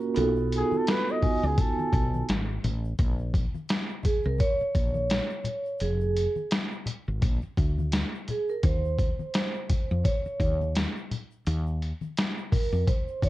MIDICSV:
0, 0, Header, 1, 6, 480
1, 0, Start_track
1, 0, Key_signature, -5, "minor"
1, 0, Tempo, 705882
1, 114, Time_signature, 4, 2, 24, 8
1, 9039, End_track
2, 0, Start_track
2, 0, Title_t, "Flugelhorn"
2, 0, Program_c, 0, 56
2, 382, Note_on_c, 0, 68, 91
2, 523, Note_on_c, 0, 69, 92
2, 533, Note_off_c, 0, 68, 0
2, 612, Note_on_c, 0, 71, 105
2, 622, Note_off_c, 0, 69, 0
2, 756, Note_on_c, 0, 75, 106
2, 766, Note_off_c, 0, 71, 0
2, 994, Note_on_c, 0, 68, 91
2, 1005, Note_off_c, 0, 75, 0
2, 1089, Note_on_c, 0, 69, 94
2, 1099, Note_off_c, 0, 68, 0
2, 1561, Note_off_c, 0, 69, 0
2, 9039, End_track
3, 0, Start_track
3, 0, Title_t, "Vibraphone"
3, 0, Program_c, 1, 11
3, 0, Note_on_c, 1, 58, 89
3, 0, Note_on_c, 1, 61, 82
3, 0, Note_on_c, 1, 65, 86
3, 0, Note_on_c, 1, 66, 84
3, 0, Note_on_c, 1, 70, 104
3, 96, Note_off_c, 1, 65, 0
3, 97, Note_on_c, 1, 59, 89
3, 100, Note_off_c, 1, 66, 0
3, 100, Note_on_c, 1, 63, 80
3, 104, Note_off_c, 1, 61, 0
3, 104, Note_on_c, 1, 65, 87
3, 105, Note_off_c, 1, 58, 0
3, 108, Note_on_c, 1, 69, 98
3, 109, Note_on_c, 1, 66, 78
3, 110, Note_off_c, 1, 70, 0
3, 785, Note_off_c, 1, 59, 0
3, 786, Note_off_c, 1, 63, 0
3, 789, Note_off_c, 1, 65, 0
3, 790, Note_off_c, 1, 69, 0
3, 791, Note_off_c, 1, 66, 0
3, 824, Note_on_c, 1, 59, 61
3, 825, Note_on_c, 1, 63, 56
3, 827, Note_on_c, 1, 65, 58
3, 832, Note_on_c, 1, 66, 57
3, 832, Note_on_c, 1, 80, 72
3, 1509, Note_off_c, 1, 59, 0
3, 1509, Note_off_c, 1, 63, 0
3, 1510, Note_off_c, 1, 65, 0
3, 1513, Note_off_c, 1, 66, 0
3, 1513, Note_off_c, 1, 80, 0
3, 2758, Note_on_c, 1, 68, 86
3, 2898, Note_on_c, 1, 70, 84
3, 2899, Note_off_c, 1, 68, 0
3, 2942, Note_off_c, 1, 70, 0
3, 2992, Note_on_c, 1, 73, 99
3, 3954, Note_on_c, 1, 68, 77
3, 3982, Note_off_c, 1, 73, 0
3, 4407, Note_off_c, 1, 68, 0
3, 5648, Note_on_c, 1, 68, 69
3, 5779, Note_on_c, 1, 70, 76
3, 5784, Note_off_c, 1, 68, 0
3, 5879, Note_off_c, 1, 70, 0
3, 5882, Note_on_c, 1, 72, 95
3, 6829, Note_on_c, 1, 73, 89
3, 6867, Note_off_c, 1, 72, 0
3, 7284, Note_off_c, 1, 73, 0
3, 8511, Note_on_c, 1, 70, 76
3, 8735, Note_off_c, 1, 70, 0
3, 8750, Note_on_c, 1, 72, 82
3, 8975, Note_off_c, 1, 72, 0
3, 9004, Note_on_c, 1, 73, 90
3, 9039, Note_off_c, 1, 73, 0
3, 9039, End_track
4, 0, Start_track
4, 0, Title_t, "Fretless electric bass"
4, 0, Program_c, 2, 35
4, 115, Note_on_c, 2, 35, 99
4, 419, Note_off_c, 2, 35, 0
4, 975, Note_on_c, 2, 37, 87
4, 1055, Note_off_c, 2, 37, 0
4, 1314, Note_on_c, 2, 35, 90
4, 1506, Note_off_c, 2, 35, 0
4, 1557, Note_on_c, 2, 32, 89
4, 1748, Note_off_c, 2, 32, 0
4, 1795, Note_on_c, 2, 33, 89
4, 1987, Note_off_c, 2, 33, 0
4, 2034, Note_on_c, 2, 34, 107
4, 2338, Note_off_c, 2, 34, 0
4, 2894, Note_on_c, 2, 36, 86
4, 2974, Note_off_c, 2, 36, 0
4, 3231, Note_on_c, 2, 34, 83
4, 3536, Note_off_c, 2, 34, 0
4, 3952, Note_on_c, 2, 29, 92
4, 4257, Note_off_c, 2, 29, 0
4, 4815, Note_on_c, 2, 32, 87
4, 4895, Note_off_c, 2, 32, 0
4, 4915, Note_on_c, 2, 34, 97
4, 5026, Note_off_c, 2, 34, 0
4, 5152, Note_on_c, 2, 38, 84
4, 5457, Note_off_c, 2, 38, 0
4, 5876, Note_on_c, 2, 39, 92
4, 6179, Note_off_c, 2, 39, 0
4, 6738, Note_on_c, 2, 41, 79
4, 6817, Note_off_c, 2, 41, 0
4, 7071, Note_on_c, 2, 39, 88
4, 7376, Note_off_c, 2, 39, 0
4, 7798, Note_on_c, 2, 39, 111
4, 8100, Note_off_c, 2, 39, 0
4, 8652, Note_on_c, 2, 41, 78
4, 8733, Note_off_c, 2, 41, 0
4, 8992, Note_on_c, 2, 39, 77
4, 9039, Note_off_c, 2, 39, 0
4, 9039, End_track
5, 0, Start_track
5, 0, Title_t, "Muted fretless electric bass strokes"
5, 1215, Note_on_c, 9, 29, 45
5, 1283, Note_off_c, 9, 29, 0
5, 3135, Note_on_c, 9, 29, 42
5, 3203, Note_off_c, 9, 29, 0
5, 5053, Note_on_c, 9, 29, 43
5, 5121, Note_off_c, 9, 29, 0
5, 6975, Note_on_c, 9, 29, 43
5, 7043, Note_off_c, 9, 29, 0
5, 9039, End_track
6, 0, Start_track
6, 0, Title_t, "Drums"
6, 0, Note_on_c, 9, 82, 52
6, 65, Note_off_c, 9, 82, 0
6, 98, Note_on_c, 9, 82, 58
6, 108, Note_on_c, 9, 42, 83
6, 166, Note_off_c, 9, 82, 0
6, 176, Note_off_c, 9, 42, 0
6, 241, Note_on_c, 9, 82, 48
6, 309, Note_off_c, 9, 82, 0
6, 348, Note_on_c, 9, 82, 52
6, 355, Note_on_c, 9, 42, 69
6, 416, Note_off_c, 9, 82, 0
6, 423, Note_off_c, 9, 42, 0
6, 488, Note_on_c, 9, 63, 60
6, 488, Note_on_c, 9, 82, 45
6, 556, Note_off_c, 9, 63, 0
6, 556, Note_off_c, 9, 82, 0
6, 592, Note_on_c, 9, 42, 93
6, 593, Note_on_c, 9, 82, 66
6, 600, Note_on_c, 9, 38, 118
6, 660, Note_off_c, 9, 42, 0
6, 661, Note_off_c, 9, 82, 0
6, 668, Note_off_c, 9, 38, 0
6, 736, Note_on_c, 9, 82, 45
6, 804, Note_off_c, 9, 82, 0
6, 830, Note_on_c, 9, 64, 66
6, 830, Note_on_c, 9, 82, 49
6, 833, Note_on_c, 9, 36, 94
6, 833, Note_on_c, 9, 46, 66
6, 898, Note_off_c, 9, 64, 0
6, 898, Note_off_c, 9, 82, 0
6, 901, Note_off_c, 9, 36, 0
6, 901, Note_off_c, 9, 46, 0
6, 970, Note_on_c, 9, 82, 43
6, 1038, Note_off_c, 9, 82, 0
6, 1072, Note_on_c, 9, 63, 39
6, 1072, Note_on_c, 9, 64, 56
6, 1072, Note_on_c, 9, 82, 57
6, 1073, Note_on_c, 9, 36, 105
6, 1073, Note_on_c, 9, 42, 90
6, 1140, Note_off_c, 9, 63, 0
6, 1140, Note_off_c, 9, 64, 0
6, 1140, Note_off_c, 9, 82, 0
6, 1141, Note_off_c, 9, 36, 0
6, 1141, Note_off_c, 9, 42, 0
6, 1215, Note_on_c, 9, 63, 62
6, 1215, Note_on_c, 9, 82, 42
6, 1283, Note_off_c, 9, 63, 0
6, 1283, Note_off_c, 9, 82, 0
6, 1310, Note_on_c, 9, 36, 95
6, 1313, Note_on_c, 9, 42, 70
6, 1314, Note_on_c, 9, 82, 49
6, 1378, Note_off_c, 9, 36, 0
6, 1381, Note_off_c, 9, 42, 0
6, 1382, Note_off_c, 9, 82, 0
6, 1455, Note_on_c, 9, 63, 70
6, 1455, Note_on_c, 9, 82, 53
6, 1523, Note_off_c, 9, 63, 0
6, 1523, Note_off_c, 9, 82, 0
6, 1553, Note_on_c, 9, 42, 86
6, 1558, Note_on_c, 9, 82, 66
6, 1562, Note_on_c, 9, 38, 123
6, 1621, Note_off_c, 9, 42, 0
6, 1626, Note_off_c, 9, 82, 0
6, 1630, Note_off_c, 9, 38, 0
6, 1694, Note_on_c, 9, 82, 46
6, 1762, Note_off_c, 9, 82, 0
6, 1795, Note_on_c, 9, 42, 65
6, 1797, Note_on_c, 9, 63, 52
6, 1797, Note_on_c, 9, 64, 72
6, 1797, Note_on_c, 9, 82, 51
6, 1863, Note_off_c, 9, 42, 0
6, 1865, Note_off_c, 9, 63, 0
6, 1865, Note_off_c, 9, 64, 0
6, 1865, Note_off_c, 9, 82, 0
6, 1932, Note_on_c, 9, 82, 54
6, 2000, Note_off_c, 9, 82, 0
6, 2029, Note_on_c, 9, 82, 56
6, 2031, Note_on_c, 9, 42, 72
6, 2032, Note_on_c, 9, 36, 108
6, 2097, Note_off_c, 9, 82, 0
6, 2099, Note_off_c, 9, 42, 0
6, 2100, Note_off_c, 9, 36, 0
6, 2168, Note_on_c, 9, 82, 44
6, 2236, Note_off_c, 9, 82, 0
6, 2271, Note_on_c, 9, 36, 102
6, 2273, Note_on_c, 9, 82, 48
6, 2277, Note_on_c, 9, 42, 66
6, 2339, Note_off_c, 9, 36, 0
6, 2341, Note_off_c, 9, 82, 0
6, 2345, Note_off_c, 9, 42, 0
6, 2410, Note_on_c, 9, 63, 60
6, 2410, Note_on_c, 9, 82, 41
6, 2478, Note_off_c, 9, 63, 0
6, 2478, Note_off_c, 9, 82, 0
6, 2507, Note_on_c, 9, 82, 59
6, 2510, Note_on_c, 9, 42, 94
6, 2518, Note_on_c, 9, 38, 112
6, 2575, Note_off_c, 9, 82, 0
6, 2578, Note_off_c, 9, 42, 0
6, 2586, Note_off_c, 9, 38, 0
6, 2644, Note_on_c, 9, 82, 41
6, 2712, Note_off_c, 9, 82, 0
6, 2742, Note_on_c, 9, 64, 64
6, 2742, Note_on_c, 9, 82, 44
6, 2753, Note_on_c, 9, 36, 87
6, 2753, Note_on_c, 9, 42, 86
6, 2810, Note_off_c, 9, 64, 0
6, 2810, Note_off_c, 9, 82, 0
6, 2821, Note_off_c, 9, 36, 0
6, 2821, Note_off_c, 9, 42, 0
6, 2877, Note_on_c, 9, 82, 40
6, 2945, Note_off_c, 9, 82, 0
6, 2981, Note_on_c, 9, 63, 39
6, 2981, Note_on_c, 9, 64, 55
6, 2981, Note_on_c, 9, 82, 54
6, 2993, Note_on_c, 9, 36, 96
6, 2993, Note_on_c, 9, 42, 90
6, 3049, Note_off_c, 9, 63, 0
6, 3049, Note_off_c, 9, 64, 0
6, 3049, Note_off_c, 9, 82, 0
6, 3061, Note_off_c, 9, 36, 0
6, 3061, Note_off_c, 9, 42, 0
6, 3120, Note_on_c, 9, 82, 43
6, 3188, Note_off_c, 9, 82, 0
6, 3223, Note_on_c, 9, 82, 45
6, 3230, Note_on_c, 9, 36, 86
6, 3233, Note_on_c, 9, 42, 64
6, 3291, Note_off_c, 9, 82, 0
6, 3298, Note_off_c, 9, 36, 0
6, 3301, Note_off_c, 9, 42, 0
6, 3362, Note_on_c, 9, 63, 70
6, 3362, Note_on_c, 9, 82, 47
6, 3430, Note_off_c, 9, 63, 0
6, 3430, Note_off_c, 9, 82, 0
6, 3463, Note_on_c, 9, 82, 63
6, 3469, Note_on_c, 9, 42, 89
6, 3477, Note_on_c, 9, 38, 114
6, 3531, Note_off_c, 9, 82, 0
6, 3537, Note_off_c, 9, 42, 0
6, 3545, Note_off_c, 9, 38, 0
6, 3605, Note_on_c, 9, 82, 45
6, 3673, Note_off_c, 9, 82, 0
6, 3702, Note_on_c, 9, 64, 66
6, 3702, Note_on_c, 9, 82, 47
6, 3707, Note_on_c, 9, 42, 65
6, 3770, Note_off_c, 9, 64, 0
6, 3770, Note_off_c, 9, 82, 0
6, 3775, Note_off_c, 9, 42, 0
6, 3843, Note_on_c, 9, 82, 50
6, 3911, Note_off_c, 9, 82, 0
6, 3937, Note_on_c, 9, 82, 55
6, 3946, Note_on_c, 9, 42, 77
6, 4005, Note_off_c, 9, 82, 0
6, 4014, Note_off_c, 9, 42, 0
6, 4084, Note_on_c, 9, 82, 48
6, 4152, Note_off_c, 9, 82, 0
6, 4185, Note_on_c, 9, 82, 49
6, 4193, Note_on_c, 9, 42, 68
6, 4253, Note_off_c, 9, 82, 0
6, 4261, Note_off_c, 9, 42, 0
6, 4325, Note_on_c, 9, 63, 57
6, 4325, Note_on_c, 9, 82, 41
6, 4393, Note_off_c, 9, 63, 0
6, 4393, Note_off_c, 9, 82, 0
6, 4427, Note_on_c, 9, 42, 97
6, 4432, Note_on_c, 9, 82, 58
6, 4435, Note_on_c, 9, 38, 110
6, 4495, Note_off_c, 9, 42, 0
6, 4500, Note_off_c, 9, 82, 0
6, 4503, Note_off_c, 9, 38, 0
6, 4568, Note_on_c, 9, 82, 42
6, 4636, Note_off_c, 9, 82, 0
6, 4665, Note_on_c, 9, 64, 70
6, 4665, Note_on_c, 9, 82, 49
6, 4671, Note_on_c, 9, 42, 93
6, 4733, Note_off_c, 9, 64, 0
6, 4733, Note_off_c, 9, 82, 0
6, 4739, Note_off_c, 9, 42, 0
6, 4806, Note_on_c, 9, 82, 43
6, 4874, Note_off_c, 9, 82, 0
6, 4905, Note_on_c, 9, 63, 42
6, 4905, Note_on_c, 9, 64, 58
6, 4905, Note_on_c, 9, 82, 56
6, 4910, Note_on_c, 9, 42, 90
6, 4912, Note_on_c, 9, 36, 98
6, 4973, Note_off_c, 9, 63, 0
6, 4973, Note_off_c, 9, 64, 0
6, 4973, Note_off_c, 9, 82, 0
6, 4978, Note_off_c, 9, 42, 0
6, 4980, Note_off_c, 9, 36, 0
6, 5042, Note_on_c, 9, 82, 41
6, 5110, Note_off_c, 9, 82, 0
6, 5150, Note_on_c, 9, 82, 47
6, 5151, Note_on_c, 9, 36, 88
6, 5155, Note_on_c, 9, 42, 68
6, 5218, Note_off_c, 9, 82, 0
6, 5219, Note_off_c, 9, 36, 0
6, 5223, Note_off_c, 9, 42, 0
6, 5294, Note_on_c, 9, 63, 67
6, 5294, Note_on_c, 9, 82, 47
6, 5362, Note_off_c, 9, 63, 0
6, 5362, Note_off_c, 9, 82, 0
6, 5387, Note_on_c, 9, 42, 95
6, 5395, Note_on_c, 9, 38, 112
6, 5395, Note_on_c, 9, 82, 64
6, 5455, Note_off_c, 9, 42, 0
6, 5463, Note_off_c, 9, 38, 0
6, 5463, Note_off_c, 9, 82, 0
6, 5538, Note_on_c, 9, 82, 45
6, 5606, Note_off_c, 9, 82, 0
6, 5630, Note_on_c, 9, 42, 64
6, 5635, Note_on_c, 9, 64, 66
6, 5635, Note_on_c, 9, 82, 49
6, 5698, Note_off_c, 9, 42, 0
6, 5703, Note_off_c, 9, 64, 0
6, 5703, Note_off_c, 9, 82, 0
6, 5773, Note_on_c, 9, 82, 52
6, 5841, Note_off_c, 9, 82, 0
6, 5870, Note_on_c, 9, 42, 74
6, 5872, Note_on_c, 9, 36, 111
6, 5874, Note_on_c, 9, 82, 54
6, 5938, Note_off_c, 9, 42, 0
6, 5940, Note_off_c, 9, 36, 0
6, 5942, Note_off_c, 9, 82, 0
6, 6015, Note_on_c, 9, 82, 46
6, 6083, Note_off_c, 9, 82, 0
6, 6111, Note_on_c, 9, 36, 97
6, 6115, Note_on_c, 9, 42, 68
6, 6120, Note_on_c, 9, 82, 51
6, 6179, Note_off_c, 9, 36, 0
6, 6183, Note_off_c, 9, 42, 0
6, 6188, Note_off_c, 9, 82, 0
6, 6251, Note_on_c, 9, 63, 60
6, 6251, Note_on_c, 9, 82, 40
6, 6319, Note_off_c, 9, 63, 0
6, 6319, Note_off_c, 9, 82, 0
6, 6350, Note_on_c, 9, 42, 97
6, 6356, Note_on_c, 9, 82, 63
6, 6358, Note_on_c, 9, 38, 119
6, 6418, Note_off_c, 9, 42, 0
6, 6424, Note_off_c, 9, 82, 0
6, 6426, Note_off_c, 9, 38, 0
6, 6490, Note_on_c, 9, 82, 42
6, 6558, Note_off_c, 9, 82, 0
6, 6590, Note_on_c, 9, 64, 67
6, 6590, Note_on_c, 9, 82, 49
6, 6592, Note_on_c, 9, 42, 87
6, 6593, Note_on_c, 9, 36, 90
6, 6658, Note_off_c, 9, 64, 0
6, 6658, Note_off_c, 9, 82, 0
6, 6660, Note_off_c, 9, 42, 0
6, 6661, Note_off_c, 9, 36, 0
6, 6733, Note_on_c, 9, 82, 40
6, 6801, Note_off_c, 9, 82, 0
6, 6833, Note_on_c, 9, 36, 98
6, 6833, Note_on_c, 9, 63, 41
6, 6833, Note_on_c, 9, 64, 56
6, 6833, Note_on_c, 9, 82, 55
6, 6834, Note_on_c, 9, 42, 94
6, 6901, Note_off_c, 9, 36, 0
6, 6901, Note_off_c, 9, 63, 0
6, 6901, Note_off_c, 9, 64, 0
6, 6901, Note_off_c, 9, 82, 0
6, 6902, Note_off_c, 9, 42, 0
6, 6971, Note_on_c, 9, 82, 44
6, 7039, Note_off_c, 9, 82, 0
6, 7070, Note_on_c, 9, 36, 84
6, 7074, Note_on_c, 9, 42, 63
6, 7079, Note_on_c, 9, 82, 47
6, 7138, Note_off_c, 9, 36, 0
6, 7142, Note_off_c, 9, 42, 0
6, 7147, Note_off_c, 9, 82, 0
6, 7217, Note_on_c, 9, 63, 68
6, 7217, Note_on_c, 9, 82, 47
6, 7285, Note_off_c, 9, 63, 0
6, 7285, Note_off_c, 9, 82, 0
6, 7312, Note_on_c, 9, 42, 87
6, 7316, Note_on_c, 9, 82, 66
6, 7320, Note_on_c, 9, 38, 115
6, 7380, Note_off_c, 9, 42, 0
6, 7384, Note_off_c, 9, 82, 0
6, 7388, Note_off_c, 9, 38, 0
6, 7456, Note_on_c, 9, 82, 45
6, 7524, Note_off_c, 9, 82, 0
6, 7555, Note_on_c, 9, 64, 66
6, 7555, Note_on_c, 9, 82, 48
6, 7557, Note_on_c, 9, 42, 61
6, 7623, Note_off_c, 9, 64, 0
6, 7623, Note_off_c, 9, 82, 0
6, 7625, Note_off_c, 9, 42, 0
6, 7690, Note_on_c, 9, 82, 48
6, 7758, Note_off_c, 9, 82, 0
6, 7792, Note_on_c, 9, 82, 57
6, 7796, Note_on_c, 9, 42, 76
6, 7860, Note_off_c, 9, 82, 0
6, 7864, Note_off_c, 9, 42, 0
6, 7932, Note_on_c, 9, 82, 48
6, 8000, Note_off_c, 9, 82, 0
6, 8030, Note_on_c, 9, 82, 50
6, 8039, Note_on_c, 9, 42, 69
6, 8098, Note_off_c, 9, 82, 0
6, 8107, Note_off_c, 9, 42, 0
6, 8168, Note_on_c, 9, 63, 61
6, 8168, Note_on_c, 9, 82, 41
6, 8236, Note_off_c, 9, 63, 0
6, 8236, Note_off_c, 9, 82, 0
6, 8277, Note_on_c, 9, 42, 98
6, 8277, Note_on_c, 9, 82, 63
6, 8285, Note_on_c, 9, 38, 109
6, 8345, Note_off_c, 9, 42, 0
6, 8345, Note_off_c, 9, 82, 0
6, 8353, Note_off_c, 9, 38, 0
6, 8417, Note_on_c, 9, 82, 43
6, 8485, Note_off_c, 9, 82, 0
6, 8514, Note_on_c, 9, 64, 68
6, 8514, Note_on_c, 9, 82, 47
6, 8516, Note_on_c, 9, 36, 90
6, 8518, Note_on_c, 9, 46, 68
6, 8582, Note_off_c, 9, 64, 0
6, 8582, Note_off_c, 9, 82, 0
6, 8584, Note_off_c, 9, 36, 0
6, 8586, Note_off_c, 9, 46, 0
6, 8649, Note_on_c, 9, 82, 41
6, 8717, Note_off_c, 9, 82, 0
6, 8752, Note_on_c, 9, 63, 41
6, 8752, Note_on_c, 9, 64, 57
6, 8752, Note_on_c, 9, 82, 61
6, 8754, Note_on_c, 9, 36, 101
6, 8756, Note_on_c, 9, 42, 85
6, 8820, Note_off_c, 9, 63, 0
6, 8820, Note_off_c, 9, 64, 0
6, 8820, Note_off_c, 9, 82, 0
6, 8822, Note_off_c, 9, 36, 0
6, 8824, Note_off_c, 9, 42, 0
6, 8892, Note_on_c, 9, 82, 43
6, 8960, Note_off_c, 9, 82, 0
6, 8990, Note_on_c, 9, 82, 46
6, 8992, Note_on_c, 9, 36, 92
6, 8998, Note_on_c, 9, 42, 69
6, 9039, Note_off_c, 9, 36, 0
6, 9039, Note_off_c, 9, 42, 0
6, 9039, Note_off_c, 9, 82, 0
6, 9039, End_track
0, 0, End_of_file